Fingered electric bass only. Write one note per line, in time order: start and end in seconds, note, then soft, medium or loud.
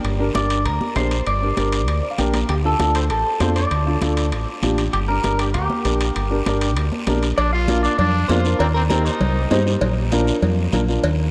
0.04 0.29 G1 medium
0.35 0.67 G1 medium
0.65 0.78 D2 medium
0.96 1.20 A#1 medium
1.27 1.51 G1 medium
1.57 1.88 G1 medium
1.88 2.00 D2 medium
2.18 2.43 A#1 medium
2.49 2.73 D2 medium
2.80 3.10 D2 medium
3.10 3.22 A1 medium
3.40 3.65 F2 medium
3.71 3.96 D2 medium
4.02 4.33 D2 medium
4.33 4.45 A1 medium
4.63 4.87 A1 medium
4.94 5.18 G1 medium
5.24 5.56 G1 medium
5.55 5.67 D2 medium
5.85 6.09 A#1 medium
6.16 6.40 G1 medium
6.46 6.77 G1 medium
6.77 6.89 D2 medium
7.07 7.32 A#1 medium
7.38 7.87 A#1 loud
7.98 8.23 F2 medium
8.29 8.54 F2 medium
8.60 9.08 D#2 loud
9.21 9.45 C2 loud
9.51 9.75 G2 medium
9.81 10.30 A#1 loud
10.42 10.67 F2 medium
10.73 10.97 A#1 loud
11.03 11.31 D#2 loud